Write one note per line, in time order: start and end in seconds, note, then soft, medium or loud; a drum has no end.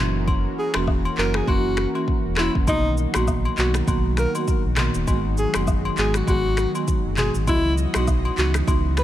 0.00 0.47 F#1 loud
0.00 0.17 E3 medium
0.00 2.64 E3 medium
0.00 0.17 A#3 medium
0.00 0.17 C#4 medium
0.00 2.65 C#4 medium
0.00 0.17 F#4 medium
0.00 7.43 F#4 medium
0.00 5.04 A#4 medium
0.27 kick loud
0.27 high agogo medium
0.59 0.73 G#4 medium
0.74 1.10 E1 medium
0.74 0.90 E3 medium
0.74 0.90 A#3 medium
0.74 0.90 C#4 medium
0.74 0.90 F#4 medium
0.74 finger snap loud
0.74 cross-stick loud
0.74 high agogo medium
0.87 kick loud
0.87 low woodblock medium
1.05 high agogo medium
1.17 1.42 F#1 loud
1.17 1.37 E3 medium
1.17 1.37 A#3 medium
1.17 1.37 C#4 medium
1.17 1.37 F#4 medium
1.17 1.33 A#4 medium
1.17 clap medium
1.34 1.46 G#4 medium
1.34 finger snap medium
1.34 cross-stick medium
1.47 1.86 F#1 loud
1.47 1.67 E3 medium
1.47 1.67 A#3 medium
1.47 1.67 C#4 medium
1.47 1.67 F#4 loud
1.47 1.93 F#4 medium
1.47 kick loud
1.47 high agogo medium
1.77 finger snap medium
1.77 cross-stick medium
1.95 2.10 E3 medium
1.95 2.10 A#3 medium
1.95 2.10 C#4 medium
1.95 2.10 F#4 medium
1.95 high agogo medium
2.08 kick medium
2.25 2.49 E1 medium
2.36 2.57 E3 medium
2.36 2.57 A#3 medium
2.36 2.57 C#4 medium
2.36 2.53 E4 medium
2.36 2.57 F#4 medium
2.36 finger snap medium
2.36 cross-stick loud
2.36 clap loud
2.36 high agogo medium
2.55 2.65 F#1 medium
2.55 kick medium
2.67 3.06 B1 loud
2.67 3.11 D#3 medium
2.67 5.05 D#3 medium
2.67 9.04 F#3 medium
2.67 3.11 A#3 medium
2.67 3.11 B3 medium
2.67 2.94 D#4 loud
2.67 3.11 F#4 loud
2.67 kick loud
2.67 high agogo medium
2.67 shaker medium
2.97 shaker medium
3.14 3.50 A#1 medium
3.14 3.30 D#3 medium
3.14 3.30 A#3 medium
3.14 3.30 B3 medium
3.14 3.30 F#4 medium
3.14 3.26 F#4 medium
3.14 finger snap loud
3.14 cross-stick loud
3.14 high agogo medium
3.14 shaker medium
3.27 kick medium
3.27 low woodblock medium
3.27 shaker medium
3.45 high agogo medium
3.57 3.82 B1 medium
3.57 3.77 D#3 medium
3.57 3.77 A#3 medium
3.57 3.77 B3 medium
3.57 3.77 F#4 medium
3.57 3.73 F#4 medium
3.57 clap medium
3.57 shaker soft
3.74 finger snap medium
3.74 cross-stick medium
3.74 shaker medium
3.87 4.26 B1 loud
3.87 4.07 D#3 medium
3.87 4.07 A#3 medium
3.87 4.07 B3 medium
3.87 4.07 F#4 loud
3.87 kick loud
3.87 high agogo medium
3.87 shaker medium
4.17 4.33 A#4 medium
4.17 finger snap medium
4.17 cross-stick medium
4.17 shaker soft
4.35 4.50 D#3 medium
4.35 4.50 A#3 medium
4.35 4.50 B3 medium
4.35 4.50 F#4 medium
4.35 high agogo medium
4.35 shaker medium
4.48 kick loud
4.48 shaker medium
4.65 4.89 A#1 medium
4.76 4.97 D#3 medium
4.76 4.97 A#3 medium
4.76 4.97 B3 medium
4.76 4.97 F#4 medium
4.76 finger snap medium
4.76 cross-stick medium
4.76 clap medium
4.76 mid tom loud
4.76 high agogo medium
4.76 shaker medium
4.94 5.05 D#1 medium
4.94 shaker medium
5.07 5.46 G#1 loud
5.07 5.51 D#3 medium
5.07 7.45 D#3 medium
5.07 5.51 G#3 medium
5.07 7.45 G#3 medium
5.07 5.51 B3 medium
5.07 5.51 F#4 loud
5.07 kick loud
5.07 high agogo medium
5.07 shaker medium
5.37 5.53 G#4 medium
5.37 shaker medium
5.54 5.90 F#1 medium
5.54 5.70 D#3 medium
5.54 5.70 G#3 medium
5.54 5.70 B3 medium
5.54 5.70 F#4 medium
5.54 finger snap loud
5.54 cross-stick loud
5.54 high agogo medium
5.54 shaker medium
5.67 kick loud
5.67 low woodblock medium
5.67 shaker medium
5.85 high agogo medium
5.97 6.22 G#1 loud
5.97 6.17 D#3 medium
5.97 6.17 G#3 medium
5.97 6.17 B3 medium
5.97 6.17 F#4 medium
5.97 6.13 G#4 medium
5.97 clap medium
5.97 shaker medium
6.14 6.26 F#4 medium
6.14 finger snap medium
6.14 cross-stick medium
6.14 shaker medium
6.27 6.66 G#1 loud
6.27 6.47 D#3 medium
6.27 6.47 G#3 medium
6.27 6.47 B3 medium
6.27 6.47 F#4 loud
6.27 6.73 F#4 medium
6.27 kick loud
6.27 high agogo medium
6.27 shaker medium
6.57 finger snap medium
6.57 cross-stick medium
6.57 shaker soft
6.75 6.90 D#3 medium
6.75 6.90 G#3 medium
6.75 6.90 B3 medium
6.75 6.90 F#4 medium
6.75 high agogo medium
6.75 shaker medium
6.88 kick medium
6.88 shaker medium
7.05 7.29 F#1 medium
7.17 7.37 D#3 medium
7.17 7.37 G#3 medium
7.17 7.37 B3 medium
7.17 7.37 F#4 medium
7.17 7.33 G#4 medium
7.17 clap medium
7.17 mid tom loud
7.17 high agogo medium
7.17 shaker medium
7.35 7.49 G#1 medium
7.35 shaker medium
7.47 7.86 C#2 loud
7.47 7.91 E3 medium
7.47 9.04 E3 medium
7.47 7.91 B3 medium
7.47 7.74 E4 loud
7.47 9.04 F#4 medium
7.47 7.91 F#4 loud
7.47 7.91 D#5 medium
7.47 9.04 D#5 medium
7.47 kick loud
7.47 high agogo medium
7.47 shaker medium
7.78 shaker medium
7.94 8.30 B1 medium
7.94 8.10 E3 medium
7.94 8.10 B3 medium
7.94 8.10 D#4 medium
7.94 8.10 F#4 medium
7.94 8.06 F#4 medium
7.94 finger snap loud
7.94 cross-stick loud
7.94 high agogo medium
7.94 shaker medium
8.07 kick loud
8.07 low woodblock medium
8.07 shaker medium
8.25 high agogo medium
8.37 8.62 C#2 medium
8.37 8.57 E3 medium
8.37 8.57 B3 medium
8.37 8.57 D#4 medium
8.37 8.57 F#4 medium
8.37 8.53 F#4 medium
8.37 clap medium
8.37 shaker soft
8.54 finger snap medium
8.54 cross-stick loud
8.54 shaker medium
8.67 9.04 C#2 loud
8.67 8.87 E3 medium
8.67 8.87 B3 medium
8.67 8.87 D#4 medium
8.67 8.87 F#4 loud
8.67 kick loud
8.67 high agogo medium
8.67 shaker medium
8.97 9.04 B4 medium
8.97 finger snap medium
8.97 cross-stick medium
8.97 shaker soft